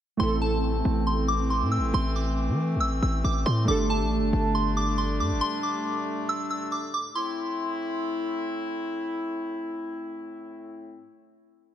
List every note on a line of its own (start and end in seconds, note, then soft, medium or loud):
0.17 0.82 A1 loud
0.17 3.64 E3 medium
0.17 3.62 A3 medium
0.17 3.64 A3 medium
0.17 3.63 C4 medium
0.17 3.64 C4 medium
0.17 3.64 E4 medium
0.17 0.38 C6 loud
0.23 3.65 A4 medium
0.42 1.03 A5 medium
0.85 1.63 A1 loud
1.07 1.25 C6 medium
1.28 1.46 D6 medium
1.50 1.68 C6 medium
1.62 1.79 A2 loud
1.72 1.90 E6 medium
1.78 1.93 A1 loud
1.94 2.50 A1 loud
1.94 2.12 C6 loud
2.16 2.77 D6 medium
2.49 2.77 E3 loud
2.76 3.01 A1 loud
2.80 2.98 E6 medium
3.02 3.23 A1 loud
3.02 3.20 E6 medium
3.24 3.45 A1 loud
3.24 3.42 D6 medium
3.46 3.67 A2 loud
3.46 3.64 C6 medium
3.65 4.02 G1 loud
3.65 6.98 G3 medium
3.65 7.10 A3 medium
3.65 6.98 A3 medium
3.65 7.11 D4 medium
3.65 6.98 D4 medium
3.65 7.12 G4 medium
3.65 3.86 D6 loud
3.71 7.13 A4 medium
3.90 4.51 A5 medium
4.01 4.18 A1 loud
4.17 4.32 G1 loud
4.33 5.21 G1 loud
4.55 4.73 C6 medium
4.77 4.94 D6 medium
4.98 5.16 C6 medium
5.20 5.33 G2 loud
5.20 5.38 D6 medium
5.31 5.41 G1 loud
5.41 5.59 C6 loud
5.63 6.25 D6 medium
6.29 6.47 E6 medium
6.50 6.68 E6 medium
6.72 6.90 D6 medium
6.94 7.12 D6 medium
7.15 11.05 A2 medium
7.15 11.05 A3 medium
7.15 11.05 C4 medium
7.15 11.05 E4 medium
7.15 8.42 C6 medium